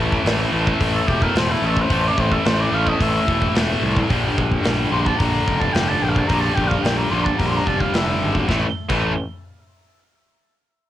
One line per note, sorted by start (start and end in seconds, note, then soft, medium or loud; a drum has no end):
0.00 0.18 A1 medium
0.00 0.55 A2 medium
0.00 0.53 E3 medium
0.00 0.52 A3 medium
0.12 kick medium
0.25 0.44 A1 medium
0.25 snare loud
0.25 open hi-hat soft
0.52 0.72 A1 medium
0.52 1.34 A2 medium
0.52 1.34 E3 medium
0.52 1.33 A3 medium
0.67 kick medium
0.80 1.00 A1 medium
0.80 kick medium
0.80 open hi-hat medium
0.94 1.09 A4 medium
1.08 1.27 E1 medium
1.08 1.24 G4 medium
1.08 kick medium
1.22 1.40 A#4 medium
1.22 kick medium
1.35 1.54 E1 medium
1.35 1.88 A2 medium
1.35 1.89 E3 medium
1.35 1.89 A3 medium
1.35 1.53 C5 medium
1.35 snare loud
1.35 open hi-hat soft
1.51 1.68 E4 medium
1.62 1.81 A1 medium
1.66 1.83 A4 medium
1.77 kick medium
1.81 1.92 C5 medium
1.90 2.09 A1 medium
1.90 2.71 A2 medium
1.90 2.71 E3 medium
1.90 2.72 A3 loud
1.90 2.08 C5 medium
1.90 kick loud
1.90 open hi-hat medium
2.07 2.21 D5 medium
2.18 2.37 A1 medium
2.18 2.34 C5 medium
2.18 kick medium
2.32 2.48 A4 medium
2.32 kick medium
2.45 2.65 A1 medium
2.45 2.63 C5 medium
2.45 snare loud
2.45 open hi-hat soft
2.61 2.76 D5 medium
2.72 2.92 A1 medium
2.72 3.54 A2 medium
2.72 3.54 E3 medium
2.72 3.53 A3 medium
2.72 2.89 F5 loud
2.87 3.03 D#5 medium
2.87 kick medium
3.00 3.19 A1 medium
3.00 3.56 E5 medium
3.00 kick medium
3.00 open hi-hat medium
3.28 3.47 E1 medium
3.28 kick medium
3.42 kick medium
3.54 3.74 E1 medium
3.54 4.08 A2 medium
3.54 4.09 E3 medium
3.54 4.09 A3 medium
3.54 snare loud
3.54 open hi-hat medium
3.82 4.01 C2 medium
3.97 kick medium
4.09 4.29 A#1 medium
4.09 4.90 G2 medium
4.09 4.91 D3 medium
4.09 4.91 G3 loud
4.09 kick medium
4.09 open hi-hat medium
4.38 4.57 A#1 medium
4.38 kick medium
4.51 kick medium
4.64 4.84 A#1 medium
4.64 snare loud
4.64 open hi-hat soft
4.92 5.11 A#1 medium
4.92 5.73 G2 medium
4.92 5.73 D3 medium
4.92 5.73 G3 medium
4.92 5.07 C6 medium
5.06 5.20 A5 medium
5.06 kick medium
5.18 5.39 A#1 medium
5.18 5.61 A#5 loud
5.18 kick medium
5.18 open hi-hat medium
5.48 5.67 F1 medium
5.48 kick medium
5.60 5.74 A5 medium
5.60 kick medium
5.73 5.94 F1 medium
5.73 6.28 G2 medium
5.73 6.28 D3 medium
5.73 6.29 G3 medium
5.73 5.90 G5 medium
5.73 snare loud
5.73 open hi-hat medium
5.88 6.04 A5 loud
6.02 6.21 A#1 medium
6.02 6.11 G5 medium
6.09 6.20 F5 medium
6.16 6.29 A5 medium
6.16 kick medium
6.27 6.49 A#1 medium
6.27 7.10 G2 medium
6.27 7.11 D3 medium
6.27 6.42 A#5 loud
6.27 kick medium
6.27 open hi-hat soft
6.32 7.10 G3 medium
6.40 6.56 A5 medium
6.55 6.76 A#1 medium
6.55 6.70 G5 loud
6.55 kick medium
6.68 6.84 F5 medium
6.68 kick medium
6.83 7.03 A#1 medium
6.83 6.98 G5 medium
6.83 snare loud
6.83 open hi-hat soft
6.97 7.12 A#5 medium
7.10 7.31 A#1 medium
7.10 7.92 G2 medium
7.10 7.93 D3 medium
7.10 7.92 G3 medium
7.10 7.26 C6 loud
7.24 7.40 A5 medium
7.24 kick medium
7.38 7.59 A#1 medium
7.38 7.49 A#5 medium
7.38 kick medium
7.38 open hi-hat soft
7.47 7.59 C6 loud
7.57 7.68 A#5 medium
7.67 7.86 F1 medium
7.67 7.82 A5 medium
7.67 kick medium
7.80 7.97 F5 medium
7.80 kick medium
7.94 8.13 F1 medium
7.94 8.47 G2 medium
7.94 8.47 D3 medium
7.94 8.48 G3 medium
7.94 8.36 E5 medium
7.94 snare loud
7.94 open hi-hat soft
8.22 8.41 G#1 medium
8.35 kick medium
8.48 8.64 A1 medium
8.48 8.65 A2 medium
8.48 8.65 E3 medium
8.48 8.65 A3 medium
8.48 kick loud
8.48 snare medium
8.89 9.15 A1 medium
8.89 9.11 A2 medium
8.89 9.12 E3 medium
8.89 9.12 A3 medium
8.89 kick medium
8.89 crash medium